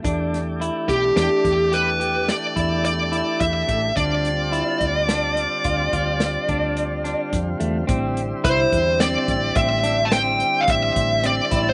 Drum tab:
HH |xxxxxxxxxxxxxx|xxxxxxxxxxxxxx|xxxxxxxxxxxxxx|
SD |-o--ooo-o-----|----o---o--oo-|----o--oo----o|
BD |o--o-o---o--oo|o--o--oo-o--o-|o-oo-oo---oo-o|